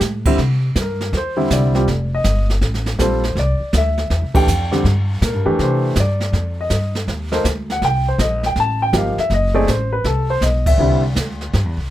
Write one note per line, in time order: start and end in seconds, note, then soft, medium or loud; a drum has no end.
0.01 0.37 A2 medium
0.01 snare soft
0.01 hi-hat pedal medium
0.25 0.37 D3 medium
0.25 0.38 G3 medium
0.25 0.38 C4 medium
0.25 0.38 E4 medium
0.25 kick medium
0.25 crash medium
0.38 0.74 C3 medium
0.38 brush sweep soft
0.38 kick soft
0.38 snare soft
0.75 1.12 G2 medium
0.75 kick soft
0.75 snare medium
0.75 hi-hat pedal medium
0.81 1.13 A#4 medium
1.01 snare soft
1.13 1.49 E2 medium
1.13 brush sweep medium
1.13 kick soft
1.13 snare soft
1.17 1.50 C5 medium
1.37 1.72 D3 medium
1.37 1.72 G3 medium
1.37 1.72 C4 medium
1.37 1.72 E4 medium
1.50 1.86 C2 medium
1.50 2.09 D5 medium
1.50 kick soft
1.50 snare medium
1.50 hi-hat pedal medium
1.75 1.86 G3 medium
1.75 1.86 C4 medium
1.75 1.86 F4 soft
1.75 1.86 G4 medium
1.75 snare soft
1.87 2.23 F1 medium
1.87 brush sweep soft
1.87 kick soft
1.87 snare soft
2.15 2.48 D#5 medium
2.24 2.60 G1 medium
2.24 kick soft
2.24 snare medium
2.24 hi-hat pedal medium
2.50 snare soft
2.61 2.97 A1 medium
2.61 brush sweep soft
2.61 kick soft
2.61 snare soft
2.74 snare soft
2.86 snare soft
2.98 3.35 A#1 medium
2.98 3.21 G3 medium
2.98 3.21 C4 soft
2.98 3.21 F4 soft
2.98 3.21 A4 medium
2.98 3.35 C5 medium
2.98 kick soft
2.98 snare medium
2.98 hi-hat pedal medium
3.24 snare soft
3.35 3.58 C2 medium
3.35 3.72 D5 medium
3.35 brush sweep soft
3.35 kick soft
3.35 snare soft
3.60 muted upright bass stroke soft
3.73 4.09 D2 medium
3.73 kick soft
3.73 snare medium
3.73 hi-hat pedal medium
3.77 4.33 E5 medium
3.98 snare soft
4.10 4.23 E2 medium
4.10 brush sweep soft
4.10 kick soft
4.10 snare soft
4.21 4.34 C2 medium
4.34 4.46 A#1 medium
4.34 4.46 E3 medium
4.34 4.46 A3 medium
4.34 4.46 D4 medium
4.34 4.46 G4 medium
4.34 4.70 G5 medium
4.34 kick medium
4.34 ride medium
4.47 4.83 F2 medium
4.47 hi-hat pedal medium
4.71 4.83 D3 medium
4.71 4.83 G3 medium
4.71 4.83 C4 medium
4.71 4.83 G4 medium
4.71 snare soft
4.84 5.20 G2 medium
4.84 brush sweep soft
4.84 kick soft
4.84 snare soft
5.22 5.34 A#2 medium
5.22 5.58 A#4 medium
5.22 kick soft
5.22 snare medium
5.22 hi-hat pedal medium
5.34 5.45 G2 medium
5.46 5.58 F2 medium
5.46 5.93 E3 medium
5.46 5.93 A3 medium
5.46 5.93 D4 medium
5.46 5.93 G4 medium
5.59 5.95 C3 medium
5.59 5.95 C5 medium
5.59 brush sweep soft
5.59 kick soft
5.59 snare soft
5.96 6.32 G2 medium
5.96 kick soft
5.96 snare medium
5.96 hi-hat pedal medium
6.00 6.56 D5 medium
6.21 snare soft
6.33 6.69 F2 medium
6.33 brush sweep soft
6.33 kick soft
6.33 snare soft
6.61 6.94 D#5 medium
6.70 7.06 G2 medium
6.70 kick soft
6.70 snare medium
6.70 hi-hat pedal soft
6.95 snare soft
7.08 7.44 D#2 medium
7.08 brush sweep medium
7.08 kick soft
7.08 snare soft
7.32 7.43 A#3 medium
7.32 7.43 D#4 medium
7.32 7.43 A4 medium
7.32 7.44 C5 medium
7.32 snare medium
7.44 7.80 D2 medium
7.44 kick soft
7.44 snare medium
7.44 hi-hat pedal medium
7.70 7.83 F#5 medium
7.70 snare soft
7.82 8.18 C2 medium
7.82 8.07 G5 medium
7.82 brush sweep soft
7.82 kick soft
7.82 snare soft
8.08 8.20 C5 medium
8.18 8.55 A#1 medium
8.18 8.44 D#5 medium
8.18 kick soft
8.18 snare medium
8.18 hi-hat pedal soft
8.43 8.57 G5 medium
8.43 snare soft
8.56 8.92 A1 medium
8.56 brush sweep soft
8.56 kick soft
8.56 snare soft
8.60 8.82 A5 loud
8.82 8.94 G5 medium
8.93 9.16 G1 medium
8.93 9.15 F3 medium
8.93 9.15 A#3 soft
8.93 9.15 D#4 soft
8.93 9.15 G4 medium
8.93 kick soft
8.93 snare medium
8.93 hi-hat pedal medium
8.97 9.19 F5 medium
9.17 9.31 E5 medium
9.17 muted upright bass stroke soft
9.17 snare soft
9.30 9.66 F#1 medium
9.30 brush sweep soft
9.30 kick soft
9.30 snare soft
9.34 9.56 D#5 medium
9.54 9.66 A3 medium
9.54 9.66 C4 medium
9.54 9.66 D#4 medium
9.54 9.66 G#4 medium
9.54 9.67 D5 medium
9.67 10.03 A1 medium
9.67 9.93 C5 medium
9.67 kick soft
9.67 snare medium
9.67 hi-hat pedal soft
9.93 10.04 B4 medium
10.04 10.40 C2 medium
10.04 10.29 A4 medium
10.04 brush sweep soft
10.04 kick soft
10.04 snare soft
10.30 10.42 C5 medium
10.41 10.77 B1 medium
10.41 10.66 D#5 medium
10.41 kick soft
10.41 snare medium
10.41 hi-hat pedal medium
10.66 11.01 E5 medium
10.66 kick medium
10.66 ride medium
10.78 11.14 C2 medium
10.78 11.01 D3 medium
10.78 11.01 G3 medium
10.78 11.01 C4 medium
10.78 11.01 E4 medium
10.78 brush sweep soft
11.16 11.52 D2 medium
11.16 kick soft
11.16 snare medium
11.16 hi-hat pedal medium
11.41 snare soft
11.53 11.65 G2 medium
11.53 brush sweep soft
11.53 kick soft
11.53 snare soft
11.65 11.77 E2 medium
11.77 11.89 C2 medium